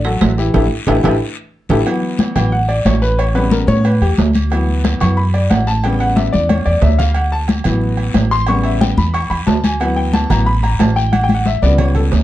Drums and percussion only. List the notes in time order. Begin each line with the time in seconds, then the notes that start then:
0.05 high conga, high timbale
0.21 high conga, high timbale, low timbale, short guiro
0.38 high conga, short guiro
0.54 low conga, high timbale, long guiro
0.87 low conga, high timbale, long guiro
1.04 low conga, high timbale, long guiro
1.69 low conga, high timbale, long guiro
1.86 high conga, low agogo, long guiro
2.03 high conga
2.18 high conga, low timbale, low agogo, short guiro
2.36 high conga, low conga, low agogo, short guiro
2.52 high conga, long guiro
2.69 high conga, low agogo
2.85 high conga, low timbale, low agogo, short guiro
3.02 high conga, short guiro
3.18 high conga, low agogo, long guiro
3.35 high conga, low agogo
3.51 high conga, low timbale, short guiro
3.68 high conga, short guiro
3.84 high conga, low agogo, long guiro
4.02 high conga, low agogo
4.18 high conga, low timbale, short guiro
4.34 high conga, low agogo, short guiro
4.50 high conga, low agogo, long guiro
4.68 high conga
4.84 high conga, low timbale, low agogo, short guiro
5.00 high conga, low conga, low agogo, short guiro
5.17 high conga, long guiro
5.34 high conga, low agogo
5.51 high conga, low timbale, low agogo, short guiro
5.67 high conga, short guiro
5.84 high conga, low agogo, long guiro
6.00 high conga, low agogo
6.17 high conga, low timbale, short guiro
6.33 high conga, short guiro
6.49 high conga, low agogo, long guiro
6.66 low agogo
6.82 low conga, low timbale, short guiro
6.99 low conga, low agogo, short guiro
7.14 high conga, low agogo, long guiro
7.33 high conga
7.48 high conga, low timbale, low agogo, short guiro
7.64 high conga, low conga, low agogo, short guiro
7.81 high conga, long guiro
7.97 high conga, low agogo
8.14 high conga, low timbale, low agogo, short guiro
8.31 short guiro
8.47 high conga, low agogo, long guiro
8.63 high conga, low agogo
8.81 high conga, low timbale, short guiro
8.98 high conga, short guiro
9.14 high conga, low agogo, long guiro
9.31 high conga, low agogo
9.47 high conga, low timbale, short guiro
9.64 high conga, low agogo, short guiro
9.80 high conga, low agogo, long guiro
9.97 high conga
10.13 high conga, low timbale, low agogo, short guiro
10.30 high conga, low conga, low agogo, short guiro
10.47 high conga, long guiro
10.63 high conga, low agogo
10.80 high conga, low timbale, low agogo, short guiro
10.96 high conga, short guiro
11.13 high conga, low agogo, long guiro
11.29 high conga, low agogo
11.46 high conga, low timbale, short guiro
11.63 short guiro
11.78 low conga, low agogo, long guiro
11.95 low conga, low agogo
12.12 low conga, low timbale, short guiro